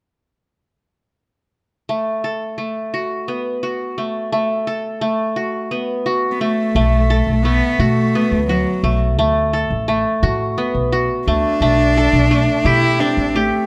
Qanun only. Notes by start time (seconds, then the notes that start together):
1.89 A3
2.24 A4
2.58 A3
2.94 F#4
3.28 B3
3.63 F#4
3.98 A3
4.32 A3
4.67 A4
5.01 A3
5.36 F#4
5.71 B3
6.06 F#4
6.41 A3
6.76 A3
7.10 A4
7.45 A3
7.80 F#4
8.15 B3
8.49 F#4
8.84 A3
9.19 A3
9.53 A4
9.88 A3
10.23 F#4
10.58 B3
10.92 F#4
11.28 A3
11.62 A3
11.97 A4
12.31 A3
12.66 G4
13.00 C4
13.36 G4